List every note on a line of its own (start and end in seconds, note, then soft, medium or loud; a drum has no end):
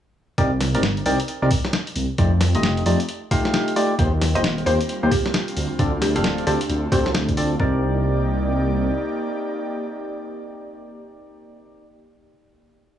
0.38 0.76 C2 loud
0.38 0.51 C4 loud
0.38 0.51 D#4 medium
0.38 0.51 G4 medium
0.38 0.51 A#4 medium
0.38 0.51 D5 loud
0.38 kick loud
0.38 closed hi-hat medium
0.61 snare medium
0.61 open hi-hat loud
0.75 1.02 G1 medium
0.75 0.83 C4 medium
0.75 0.83 D#4 medium
0.75 0.83 G4 medium
0.75 0.83 A#4 medium
0.75 0.83 D5 loud
0.75 closed hi-hat medium
0.83 snare loud
0.97 closed hi-hat soft
1.06 1.16 C2 medium
1.06 1.19 C4 loud
1.06 1.19 D#4 medium
1.06 1.19 G4 medium
1.06 1.19 A#4 medium
1.06 1.19 D5 loud
1.06 open hi-hat loud
1.20 closed hi-hat medium
1.28 closed hi-hat medium
1.42 1.48 C2 medium
1.42 1.50 C4 loud
1.42 1.50 D#4 medium
1.42 1.50 G4 medium
1.42 1.50 A#4 medium
1.42 1.50 D5 loud
1.51 kick loud
1.51 open hi-hat loud
1.65 snare medium
1.73 snare loud
1.87 closed hi-hat medium
1.96 2.06 C2 medium
1.96 open hi-hat loud
2.18 2.56 F2 loud
2.18 2.32 A3 medium
2.18 2.32 D#4 medium
2.18 2.32 F4 medium
2.18 2.32 G4 medium
2.18 2.32 D5 medium
2.18 kick loud
2.18 closed hi-hat medium
2.41 snare medium
2.41 open hi-hat loud
2.55 2.82 F1 medium
2.55 2.84 A3 medium
2.55 2.84 D#4 medium
2.55 2.84 F4 medium
2.55 2.84 G4 medium
2.55 2.84 D#5 medium
2.55 closed hi-hat medium
2.63 snare loud
2.77 closed hi-hat soft
2.86 2.96 F2 medium
2.86 3.00 A3 medium
2.86 3.00 D#4 medium
2.86 3.00 F4 medium
2.86 3.00 G4 medium
2.86 2.99 D5 loud
2.86 open hi-hat loud
3.00 closed hi-hat medium
3.09 closed hi-hat medium
3.31 3.74 A3 loud
3.31 3.74 D#4 loud
3.31 3.74 F4 medium
3.31 3.74 G4 loud
3.31 3.74 F5 loud
3.31 kick loud
3.31 open hi-hat loud
3.45 snare medium
3.54 snare loud
3.68 closed hi-hat medium
3.76 3.95 A3 medium
3.76 3.95 D#4 medium
3.76 3.95 F4 medium
3.76 3.95 G4 medium
3.76 3.95 D5 loud
3.76 open hi-hat loud
3.99 4.37 D#2 loud
3.99 5.55 G3 medium
3.99 4.12 A#3 loud
3.99 5.55 A#3 medium
3.99 7.56 C4 medium
3.99 4.12 D#4 medium
3.99 4.12 F4 medium
3.99 7.56 F4 medium
3.99 4.12 G4 medium
3.99 4.12 C5 loud
3.99 kick loud
3.99 closed hi-hat medium
4.22 snare medium
4.22 open hi-hat loud
4.35 4.62 D#1 medium
4.35 4.44 A#3 medium
4.35 4.44 D#4 medium
4.35 4.44 F4 medium
4.35 4.44 G4 medium
4.35 4.44 C5 loud
4.35 4.50 D#5 loud
4.35 closed hi-hat medium
4.44 snare loud
4.58 closed hi-hat soft
4.66 4.76 D#2 medium
4.66 4.80 A#3 loud
4.66 4.80 D#4 medium
4.66 4.80 F4 medium
4.66 4.80 G4 medium
4.66 4.84 C5 medium
4.66 4.80 C5 loud
4.66 open hi-hat loud
4.81 closed hi-hat medium
4.89 closed hi-hat medium
5.03 5.09 D#2 medium
5.03 5.11 A#3 loud
5.03 5.11 D#4 medium
5.03 5.11 F4 medium
5.03 5.11 G4 medium
5.03 5.11 C5 loud
5.11 5.48 G4 medium
5.11 kick loud
5.11 open hi-hat loud
5.26 snare medium
5.34 snare loud
5.48 closed hi-hat medium
5.57 5.67 D2 medium
5.57 7.58 A3 medium
5.57 7.58 D4 medium
5.57 open hi-hat loud
5.79 6.17 D2 loud
5.79 5.93 C4 medium
5.79 5.93 D4 medium
5.79 5.93 F4 medium
5.79 5.93 A4 medium
5.79 5.93 D5 medium
5.79 kick loud
5.79 closed hi-hat medium
6.02 6.11 G4 medium
6.02 snare medium
6.02 open hi-hat loud
6.16 6.43 D1 medium
6.16 6.45 C4 medium
6.16 6.45 D4 medium
6.16 6.45 F4 medium
6.16 6.21 G4 medium
6.16 6.45 A4 medium
6.16 6.45 F5 medium
6.16 closed hi-hat medium
6.24 snare loud
6.38 closed hi-hat soft
6.47 6.57 D2 medium
6.47 6.60 C4 medium
6.47 6.60 D4 medium
6.47 6.60 F4 medium
6.47 6.65 G4 medium
6.47 6.60 A4 medium
6.47 6.60 D5 loud
6.47 open hi-hat loud
6.61 closed hi-hat medium
6.69 6.87 D2 loud
6.69 closed hi-hat medium
6.92 7.56 D2 loud
6.92 7.11 C4 loud
6.92 7.11 D4 loud
6.92 7.11 F4 loud
6.92 7.56 G4 medium
6.92 7.11 A4 loud
6.92 7.11 C5 loud
6.92 kick loud
6.92 open hi-hat loud
7.06 snare medium
7.15 snare loud
7.28 kick medium
7.28 closed hi-hat medium
7.37 7.56 C4 medium
7.37 7.56 D4 medium
7.37 7.56 F4 medium
7.37 7.56 A4 medium
7.37 7.56 D5 medium
7.37 open hi-hat loud
7.60 8.91 C2 loud
7.60 11.83 A#3 medium
7.60 11.83 C4 medium
7.60 11.83 D#4 medium
7.60 11.83 G4 medium
7.60 11.83 A#4 medium
7.60 11.83 D5 medium
7.60 11.83 D5 loud
7.60 kick loud